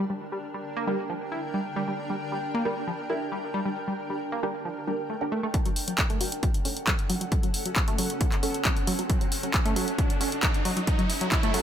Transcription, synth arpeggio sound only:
0.10 G3
0.32 G3
0.54 G3
0.77 A#3
0.87 G3
1.10 F3
1.32 E4
1.54 G3
1.76 G3
1.88 G3
2.10 G3
2.32 G3
2.54 A#3
2.65 G3
2.87 F3
3.10 E4
3.32 G3
3.54 G3
3.66 G3
3.88 G3
4.10 G3
4.32 A#3
4.43 G3
4.65 F3
4.87 G3
5.10 A3
5.32 A3
5.43 A3
5.66 F#3
5.88 F#3
6.10 A3
6.21 F#3
6.43 F3
6.65 C#4
6.87 F#3
7.10 F#3
7.21 F#3
7.43 F#3
7.66 F#3
7.88 A3
7.99 F#3
8.21 F3
8.43 C#4
8.65 F#3
8.87 F#3
8.99 F#3
9.21 F#3
9.43 F#3
9.66 A3
9.76 F#3
9.98 F3
10.21 C#4
10.43 F#3
10.65 F#3
10.77 F#3
10.99 F#3
11.21 F#3
11.43 A3
11.54 F#3

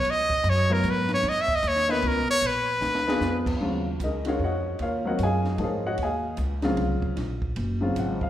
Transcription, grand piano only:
0.70 F#3 B3 E4 A#4
1.88 B3 E4 A#4 D#5
3.07 B3 D4 F4 G#4
3.61 C#3 F#3 C4 F4
4.04 D#4 G#4 A#4 D#5
4.25 D#3 G#3 C#4 F4 F#4 A#4 C#5 F5
4.44 F#4 C#5 D#5 F#5
4.82 F4 A#4 C#5 F5
5.05 F#3 C4 F4 F#4 A#4 C#5 D#5 F#5
5.23 G#4 D#5 F5 G#5
5.59 F3 A#3 D#4 G#4
5.63 F4 A#4 C#5 F5
5.86 F#4 C#5 D#5 F#5
6.03 G#4 D#5 F5 G#5
6.63 C#3 F#3 C4 F4
7.81 C#3 F#3 C4 F4
7.99 F#5
8.23 F5

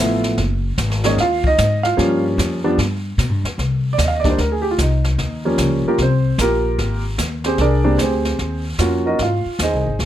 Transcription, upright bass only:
Already playing: A1
0.38 F#1
0.78 G#1
1.18 D#2
1.58 G#2
1.98 G2
2.38 F2
2.78 G2
3.18 B2
3.29 G2
3.44 F2
3.58 C2
3.98 D#2
4.38 D2
4.78 C2
5.18 D#2
5.58 C#2
5.85 muted upright bass stroke
5.98 C2
6.38 A#1
6.78 G#1
7.18 D#2
7.59 C2
7.98 D2
8.39 D#2
8.78 F2
9.19 G#2
9.46 muted upright bass stroke
9.59 D#2
9.73 C2
9.86 G#1
9.99 C#2

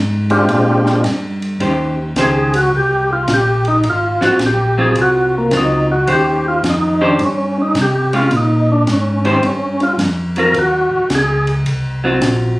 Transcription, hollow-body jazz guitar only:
1.60 D#3 C#4 G4 C5
2.17 D#3 C#4 G4 C5
4.21 F#3 C4 F4
4.78 F#3 C4 F4
5.52 F#3 C4 F4
6.07 D#3 C#4 G4 C5
7.01 D#3 C#4 G4 C5
8.13 G#3 C#4 F4
9.25 D#3 C#4 G4 C5
10.37 F#3 C4 F4
12.04 F#3 C4 F4

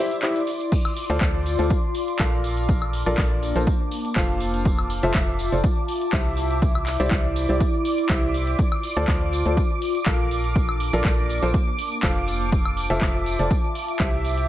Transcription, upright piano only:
0.00 E4 G4 C5 E5
0.23 E4 G4 C5 E5
1.10 F4 A4 C5 D5
1.21 F4 A4
1.59 F4 A4 C5 D5
2.20 F4 A4 A#4 F5
3.06 F4 A4 A#4 D5
3.18 F4 A4 A#4 D5
3.56 F4 A4 A#4 C5
4.16 F4 A4 C5 F5
5.03 F4 A4 C5 E5
5.15 F4 E5
5.52 F4 A4 C5 D5
6.13 E4 G4 C5 E5
7.00 E4 G4 C5 D5
7.11 E4 D5
7.49 E4 G4 C5 D5
8.10 E4 G4 C5 E5
8.96 F4 A4 C5 D5
9.08 F4
9.46 F4 A4 C5 D5
10.06 F4 A4 A#4 F5
10.93 F4 A4 A#4 D5
11.05 A4 A#4
11.43 F4 A4 A#4 C5
12.03 F4 A4 C5 F5
12.90 F4 A4 C5 E5
13.01 F4 A4 C5 E5
13.39 F4 A4 C5 D5
14.00 E4 G4 C5 E5

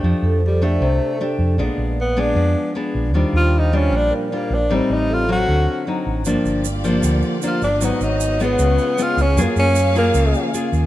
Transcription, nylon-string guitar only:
Already playing: A3 D4 G4
0.04 F3
0.62 A3 D4 G4
0.82 C3
1.20 A3 D4 G4
1.58 A#2 G#3 B3 D4
2.17 G#3 B3 D4
2.36 F3
2.75 G#3 B3 D4
3.14 D#3 G3 D4 F4
3.73 G3 D4 F4
3.92 A#2
4.32 G3 D4 F4
4.70 A2 G3 C4 D#4
5.29 F#3 C4
5.48 D3
5.87 F#3 C4 D#4
6.26 G2 F3 A#3 D4
6.84 F3 A#3 D4
7.03 D3
7.43 F3 A#3 D4
7.81 G#2 F#3 B3 D#4
8.40 G#3 B3 F4
8.59 C#3
8.98 G#3 B3 F4
9.37 F#3 A#3 F4 G#4
9.96 A#3 F4 G#4
10.15 C#3
10.54 A#3 F4 G#4

